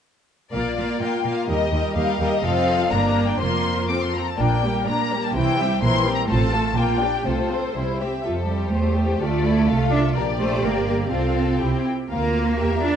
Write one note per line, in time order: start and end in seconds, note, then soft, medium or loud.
0.52 0.75 A#1 soft
0.52 0.60 A#2 soft
0.52 0.76 A#3 soft
0.52 0.76 F4 soft
0.52 0.75 A#4 soft
0.52 0.98 D5 soft
0.52 0.76 F5 soft
0.77 0.85 A#2 soft
0.77 1.00 A#3 soft
0.77 1.00 F4 soft
0.77 1.00 A#4 soft
0.77 1.01 F5 soft
1.01 1.09 A#2 soft
1.01 1.25 A#3 soft
1.01 1.25 F4 soft
1.01 1.25 A#4 soft
1.01 1.25 F5 soft
1.01 1.33 G5 soft
1.25 1.33 A#2 soft
1.25 1.49 A#3 soft
1.25 1.49 F4 soft
1.25 1.49 A#4 soft
1.25 1.49 F5 soft
1.33 1.49 F5 soft
1.48 1.71 D#2 soft
1.48 1.58 D#2 soft
1.48 1.72 G3 soft
1.48 1.72 G4 soft
1.48 1.72 A#4 soft
1.48 1.95 D#5 medium
1.48 1.72 D#5 soft
1.73 1.81 D#2 soft
1.73 1.95 G3 soft
1.73 1.95 G4 soft
1.73 1.96 A#4 soft
1.73 1.95 D#5 soft
1.96 2.05 D#2 soft
1.96 2.19 G3 soft
1.96 2.19 G4 soft
1.96 2.19 A#4 soft
1.96 2.19 D#5 soft
1.96 2.27 F5 medium
2.20 2.28 D#2 soft
2.20 2.43 G3 soft
2.20 2.43 G4 soft
2.20 2.43 A#4 soft
2.20 2.43 D#5 soft
2.28 2.44 D#5 medium
2.43 2.88 F1 soft
2.43 2.88 F2 soft
2.43 2.88 C4 soft
2.43 2.88 F4 soft
2.43 2.88 A4 soft
2.43 2.89 D#5 soft
2.43 2.91 F5 medium
2.92 3.37 G1 soft
2.92 3.39 G2 soft
2.92 3.38 A#3 soft
2.92 3.40 D4 soft
2.92 3.39 A#4 soft
2.92 3.40 D5 soft
2.92 3.24 A#5 medium
3.26 3.41 G5 soft
3.40 3.86 F1 soft
3.40 4.17 F2 soft
3.40 3.88 A#3 soft
3.40 3.89 F4 soft
3.40 3.88 A#4 soft
3.40 3.88 C5 soft
3.40 3.89 C6 medium
3.89 4.18 C4 soft
3.89 4.18 F4 soft
3.89 4.18 A4 soft
3.89 4.18 C5 soft
3.89 4.01 D6 soft
4.02 4.14 C6 soft
4.16 4.27 A#5 soft
4.28 4.40 A5 soft
4.38 4.80 A#1 soft
4.38 4.80 A#2 soft
4.38 4.62 A#3 soft
4.38 4.62 D4 soft
4.38 4.62 A#4 soft
4.38 4.62 D5 soft
4.38 4.88 G5 medium
4.64 4.88 G3 soft
4.64 4.87 A#3 soft
4.64 4.88 G4 soft
4.64 4.87 A#4 soft
4.87 5.28 A#2 soft
4.87 5.11 A#3 soft
4.87 5.12 D4 soft
4.87 5.11 A#4 soft
4.87 5.12 D5 soft
4.87 5.19 A#5 soft
5.12 5.36 G3 soft
5.12 5.36 A#3 soft
5.12 5.36 G4 soft
5.12 5.36 A#4 soft
5.21 5.36 A5 medium
5.35 5.75 C2 medium
5.35 5.75 C3 medium
5.35 5.58 E3 soft
5.35 5.58 E4 soft
5.35 5.58 C5 soft
5.35 5.82 G5 medium
5.59 5.83 G3 soft
5.59 5.83 C4 soft
5.59 5.83 G4 soft
5.59 5.83 E5 soft
5.82 6.22 A#1 medium
5.82 6.22 A#2 soft
5.82 6.05 E3 soft
5.82 6.05 E4 soft
5.82 6.04 A#4 soft
5.82 6.04 C5 soft
5.82 6.14 C6 medium
6.06 6.30 G3 soft
6.06 6.29 C4 soft
6.06 6.30 G4 soft
6.06 6.30 A#4 soft
6.15 6.21 A#5 medium
6.30 6.69 A1 medium
6.30 6.69 A2 medium
6.30 6.52 C4 soft
6.30 6.52 F4 soft
6.30 6.52 A4 soft
6.30 6.52 C5 soft
6.30 6.76 A5 medium
6.54 6.77 A3 soft
6.54 6.76 F4 soft
6.54 6.77 A4 soft
6.54 6.78 A4 soft
6.77 7.18 A#1 soft
6.77 7.18 A#2 soft
6.77 7.00 A#3 soft
6.77 7.00 F4 soft
6.77 7.00 A#4 soft
6.77 7.26 G5 medium
7.01 7.26 D4 soft
7.01 7.26 G4 soft
7.01 7.26 D5 soft
7.25 7.68 C2 soft
7.25 7.67 C3 soft
7.25 7.49 A3 soft
7.25 7.49 F4 soft
7.25 7.50 A4 soft
7.25 8.01 C5 soft
7.51 7.76 C4 soft
7.51 7.76 F4 soft
7.51 7.76 A4 soft
7.51 7.75 C5 soft
7.75 8.17 C2 soft
7.75 8.17 C3 soft
7.75 7.99 G3 soft
7.75 7.99 E4 soft
7.75 7.99 C5 soft
8.01 8.25 C4 soft
8.01 8.25 G4 soft
8.01 8.25 E5 soft
8.25 8.70 F2 soft
8.25 8.33 F4 soft
8.25 8.70 A4 soft
8.25 9.17 C5 soft
8.49 8.72 G3 soft
8.49 9.20 G4 soft
8.73 9.20 E2 soft
8.73 9.20 A3 soft
8.73 8.97 C5 soft
8.98 9.21 G4 soft
9.20 9.67 D2 medium
9.20 9.90 A3 medium
9.20 9.45 F4 soft
9.20 10.15 A4 soft
9.20 9.68 D5 soft
9.45 9.68 E4 soft
9.68 10.16 C2 soft
9.68 10.15 F4 soft
9.68 9.92 F5 soft
9.91 10.00 D4 medium
9.91 10.15 E5 medium
10.15 10.62 A#1 medium
10.15 11.12 G4 soft
10.15 10.24 A#4 medium
10.15 11.10 D5 soft
10.39 10.61 A3 medium
10.39 10.63 C5 soft
10.63 11.12 G1 soft
10.63 11.12 A#3 soft
10.63 10.86 A#4 soft
10.87 10.95 A#4 soft
11.11 11.60 C2 soft
11.11 11.84 C4 soft
11.11 11.60 F4 soft
11.11 11.59 A4 soft
11.11 11.60 F5 soft
11.60 11.69 C2 soft
11.60 11.89 E4 soft
11.60 11.89 G4 soft
11.60 11.90 G5 soft
12.10 12.55 D2 soft
12.10 12.77 A#3 medium
12.10 12.55 F4 soft
12.10 12.55 A#4 soft
12.10 12.55 F5 soft
12.58 12.96 E2 soft
12.58 12.82 G4 soft
12.58 12.96 A#4 soft
12.58 12.96 E5 soft
12.82 12.96 D4 medium
12.82 12.96 F4 soft